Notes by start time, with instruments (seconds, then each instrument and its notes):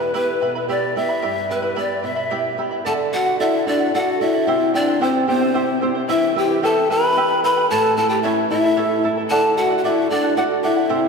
Already playing: nylon-string guitar E2 B3 E4 G4, pan flute B4
0.00 charango E4 E5 B5
0.14 nylon-string guitar B3 E4 G4, charango E4 G4 E5 G5 B5, pan flute B4
0.41 nylon-string guitar B2, charango E4 E5 G5 B5
0.55 charango E4 E5 B5
0.68 nylon-string guitar B3 E4 G4, charango E4 G4 E5 G5 B5, pan flute D5
0.95 nylon-string guitar B3 E4 G4, charango E4 E5 G5 B5, pan flute E5
1.09 charango E4 E5 B5
1.22 nylon-string guitar G2, charango E4 G4 E5 G5 B5
1.49 nylon-string guitar B3 E4 G4, charango E4 E5 G5 B5, pan flute B4
1.62 charango E4 E5 B5
1.75 nylon-string guitar B3 E4 G4, charango E4 G4 E5 G5 B5, pan flute D5
2.02 nylon-string guitar B2, charango E4 E5 G5 B5, pan flute E5
2.16 charango E4 E5 B5
2.30 nylon-string guitar B3 E4 G4, charango E4 G4 E5 G5 B5
2.57 nylon-string guitar B3 E4 G4, charango E4 E5 G5 B5
2.71 charango E4 E5 B5
2.85 nylon-string guitar D3, charango A4 D5 F#5, pan flute A4 A5
3.12 nylon-string guitar F#4, pan flute F#4 F#5, charango A4 D5 F#5
3.26 charango D5 F#5
3.40 nylon-string guitar D4, pan flute E4 E5, charango A4 D5 F#5
3.67 pan flute D4 D5, nylon-string guitar F#4, charango A4 D5 F#5
3.80 charango D5 F#5
3.94 pan flute F#4 F#5, charango A4 D5 F#5, nylon-string guitar A4
4.20 pan flute E4 E5, nylon-string guitar F#4, charango A4 D5 F#5
4.34 charango D5 F#5
4.47 nylon-string guitar C3, charango E4 G4 C5 E5 G5
4.74 pan flute D4 D5, charango E4 C5 E5 G5, nylon-string guitar G4
4.87 charango E4 C5 G5
5.01 pan flute C4 C5, nylon-string guitar E4, charango E4 G4 C5 E5 G5
5.28 pan flute C4 C5, charango E4 C5 E5 G5, nylon-string guitar G4
5.41 charango E4 C5 G5
5.54 charango E4 G4 C5 E5 G5, nylon-string guitar E4
5.81 charango E4 C5 E5 G5, nylon-string guitar G4
5.95 charango E4 C5 G5
6.08 nylon-string guitar E3, pan flute E4 E5, charango E4 G4 B4 E5 G5
6.35 charango E4 B4 E5 G5, pan flute G4 G5, nylon-string guitar B4
6.49 charango E4 B4 G5
6.63 charango E4 G4 B4 E5 G5, nylon-string guitar G4, pan flute A4 A5
6.90 charango E4 B4 E5 G5, nylon-string guitar B4, pan flute B4 B5
7.03 charango E4 B4 G5
7.17 charango E4 G4 B4 E5 G5, nylon-string guitar G4
7.43 charango E4 B4 E5 G5, pan flute B4 B5, nylon-string guitar B4
7.57 charango E4 B4 G5
7.70 nylon-string guitar A2, charango E4 A4 C#5 E5 A5, pan flute A4 A5
7.97 charango E4 A4 E5 A5, nylon-string guitar E4, pan flute A4 A5
8.09 charango E4 A4 A5, pan flute G4 G5
8.22 nylon-string guitar C#4, pan flute E4 E5, charango E4 A4 C#5 E5 A5
8.50 pan flute E4 E5, charango E4 A4 E5 A5, nylon-string guitar E4
8.64 charango E4 A4 A5
8.76 charango E4 A4 C#5 E5 A5, nylon-string guitar A4
9.04 charango E4 A4 E5 A5, nylon-string guitar E4
9.17 charango E4 A4 A5
9.29 nylon-string guitar D3, pan flute A4 A5, charango A4 D5 F#5
9.57 pan flute F#4 F#5, nylon-string guitar A4, charango A4 D5 F#5
9.71 charango D5 F#5
9.78 pan flute F#4 F#5
9.84 pan flute E4 E5, nylon-string guitar F#4, charango A4 D5 F#5
10.10 pan flute D4 D5, nylon-string guitar A4, charango A4 D5 F#5
10.24 charango D5 F#5
10.37 nylon-string guitar F#4, pan flute F#4 F#5, charango A4 D5 F#5
10.63 pan flute E4 E5, charango A4 D5 F#5, nylon-string guitar A4
10.76 charango D5 F#5
10.89 nylon-string guitar C3, charango E4 G4 C5 E5 G5